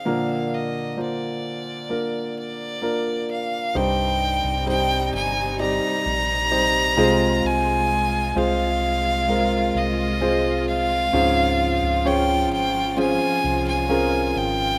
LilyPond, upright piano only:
<<
  \new Staff \with { instrumentName = "Upright piano" } { \time 4/4 \key c \minor \tempo 4 = 65 <d bes f' bes'>4 <bes d' f' c''>4 <bes d' f' bes'>4 <bes d' f' bes'>4 | <g c' ees' g' c''>4 <g c' ees' c''>4 <g c' ees' g' d''>4 <g c' ees' g' c''>8 <aes c' f' aes' c''>8~ | <aes c' f' aes' c''>4 <aes c' f' aes' c''>4 <aes c' f' aes' bes'>4 <aes c' f' aes' c''>4 | <c' des' f' aes' c''>4 <des' f' aes' c'' des''>4 <c' des' f' aes' c''>4 <c' des' f' aes' bes'>4 | }
  \new Staff \with { instrumentName = "Upright piano" } { \clef bass \time 4/4 \key c \minor <bes, f>1 | g,4. r2 c8~ | c4 r2. | aes,4. r2 r8 | }
>>